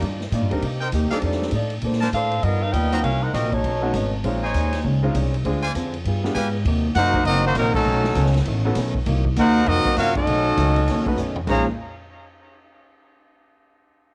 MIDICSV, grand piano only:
0, 0, Header, 1, 2, 480
1, 0, Start_track
1, 0, Key_signature, -5, "minor"
1, 0, Tempo, 301508
1, 987, Time_signature, 4, 2, 24, 8
1, 22517, End_track
2, 0, Start_track
2, 0, Title_t, "Grand piano"
2, 0, Program_c, 0, 0
2, 810, Note_on_c, 0, 55, 66
2, 817, Note_on_c, 0, 60, 59
2, 822, Note_on_c, 0, 62, 56
2, 826, Note_on_c, 0, 63, 57
2, 838, Note_on_c, 0, 70, 69
2, 972, Note_off_c, 0, 55, 0
2, 975, Note_off_c, 0, 60, 0
2, 978, Note_off_c, 0, 62, 0
2, 980, Note_off_c, 0, 63, 0
2, 985, Note_off_c, 0, 70, 0
2, 1775, Note_on_c, 0, 55, 63
2, 1780, Note_on_c, 0, 60, 58
2, 1784, Note_on_c, 0, 62, 61
2, 1793, Note_on_c, 0, 63, 61
2, 1798, Note_on_c, 0, 69, 72
2, 2397, Note_off_c, 0, 55, 0
2, 2399, Note_off_c, 0, 60, 0
2, 2401, Note_off_c, 0, 62, 0
2, 2406, Note_off_c, 0, 63, 0
2, 2408, Note_off_c, 0, 69, 0
2, 4642, Note_on_c, 0, 54, 63
2, 4646, Note_on_c, 0, 58, 58
2, 4653, Note_on_c, 0, 60, 54
2, 4656, Note_on_c, 0, 63, 55
2, 4661, Note_on_c, 0, 66, 68
2, 4810, Note_off_c, 0, 54, 0
2, 4811, Note_off_c, 0, 58, 0
2, 4815, Note_off_c, 0, 60, 0
2, 4817, Note_off_c, 0, 63, 0
2, 4819, Note_off_c, 0, 66, 0
2, 6074, Note_on_c, 0, 57, 62
2, 6084, Note_on_c, 0, 59, 59
2, 6094, Note_on_c, 0, 61, 59
2, 6095, Note_on_c, 0, 63, 60
2, 6096, Note_on_c, 0, 66, 70
2, 6246, Note_off_c, 0, 57, 0
2, 6252, Note_off_c, 0, 59, 0
2, 6257, Note_off_c, 0, 61, 0
2, 6257, Note_off_c, 0, 63, 0
2, 6258, Note_off_c, 0, 66, 0
2, 6750, Note_on_c, 0, 56, 58
2, 6755, Note_on_c, 0, 60, 59
2, 6761, Note_on_c, 0, 61, 58
2, 6769, Note_on_c, 0, 65, 74
2, 6770, Note_on_c, 0, 63, 58
2, 7019, Note_off_c, 0, 56, 0
2, 7021, Note_off_c, 0, 60, 0
2, 7025, Note_off_c, 0, 61, 0
2, 7029, Note_off_c, 0, 63, 0
2, 7029, Note_off_c, 0, 65, 0
2, 8002, Note_on_c, 0, 56, 73
2, 8009, Note_on_c, 0, 60, 68
2, 8014, Note_on_c, 0, 61, 63
2, 8016, Note_on_c, 0, 63, 67
2, 8025, Note_on_c, 0, 65, 82
2, 8172, Note_off_c, 0, 56, 0
2, 8175, Note_off_c, 0, 60, 0
2, 8177, Note_off_c, 0, 61, 0
2, 8179, Note_off_c, 0, 63, 0
2, 8183, Note_off_c, 0, 65, 0
2, 8674, Note_on_c, 0, 56, 62
2, 8681, Note_on_c, 0, 60, 60
2, 8687, Note_on_c, 0, 62, 55
2, 8688, Note_on_c, 0, 65, 58
2, 8698, Note_on_c, 0, 68, 70
2, 8942, Note_off_c, 0, 56, 0
2, 8946, Note_off_c, 0, 60, 0
2, 8948, Note_off_c, 0, 62, 0
2, 8949, Note_off_c, 0, 65, 0
2, 8954, Note_off_c, 0, 68, 0
2, 9932, Note_on_c, 0, 59, 64
2, 9934, Note_on_c, 0, 55, 64
2, 9945, Note_on_c, 0, 62, 58
2, 9945, Note_on_c, 0, 65, 61
2, 9954, Note_on_c, 0, 68, 68
2, 10097, Note_off_c, 0, 59, 0
2, 10098, Note_off_c, 0, 55, 0
2, 10104, Note_off_c, 0, 62, 0
2, 10104, Note_off_c, 0, 65, 0
2, 10108, Note_off_c, 0, 68, 0
2, 11371, Note_on_c, 0, 58, 72
2, 11382, Note_on_c, 0, 60, 67
2, 11382, Note_on_c, 0, 63, 63
2, 11390, Note_on_c, 0, 66, 68
2, 11396, Note_on_c, 0, 70, 74
2, 11998, Note_off_c, 0, 58, 0
2, 12004, Note_off_c, 0, 60, 0
2, 12004, Note_off_c, 0, 63, 0
2, 12008, Note_off_c, 0, 66, 0
2, 12011, Note_off_c, 0, 70, 0
2, 13770, Note_on_c, 0, 59, 78
2, 13776, Note_on_c, 0, 61, 68
2, 13777, Note_on_c, 0, 63, 67
2, 13781, Note_on_c, 0, 66, 70
2, 13788, Note_on_c, 0, 69, 77
2, 13936, Note_off_c, 0, 59, 0
2, 13939, Note_off_c, 0, 61, 0
2, 13939, Note_off_c, 0, 63, 0
2, 13941, Note_off_c, 0, 66, 0
2, 13944, Note_off_c, 0, 69, 0
2, 15693, Note_on_c, 0, 60, 60
2, 15695, Note_on_c, 0, 58, 64
2, 15702, Note_on_c, 0, 66, 60
2, 15705, Note_on_c, 0, 63, 58
2, 15711, Note_on_c, 0, 70, 72
2, 15856, Note_off_c, 0, 60, 0
2, 15857, Note_off_c, 0, 58, 0
2, 15861, Note_off_c, 0, 66, 0
2, 15862, Note_off_c, 0, 63, 0
2, 15865, Note_off_c, 0, 70, 0
2, 17617, Note_on_c, 0, 57, 67
2, 17624, Note_on_c, 0, 61, 60
2, 17631, Note_on_c, 0, 63, 61
2, 17639, Note_on_c, 0, 71, 72
2, 17640, Note_on_c, 0, 66, 60
2, 17777, Note_off_c, 0, 57, 0
2, 17781, Note_off_c, 0, 61, 0
2, 17784, Note_off_c, 0, 63, 0
2, 17788, Note_off_c, 0, 71, 0
2, 17789, Note_off_c, 0, 66, 0
2, 18273, Note_on_c, 0, 56, 65
2, 18276, Note_on_c, 0, 61, 62
2, 18280, Note_on_c, 0, 63, 64
2, 18288, Note_on_c, 0, 65, 60
2, 18292, Note_on_c, 0, 72, 72
2, 18538, Note_off_c, 0, 56, 0
2, 18540, Note_off_c, 0, 61, 0
2, 18542, Note_off_c, 0, 63, 0
2, 18546, Note_off_c, 0, 65, 0
2, 18548, Note_off_c, 0, 72, 0
2, 22517, End_track
0, 0, End_of_file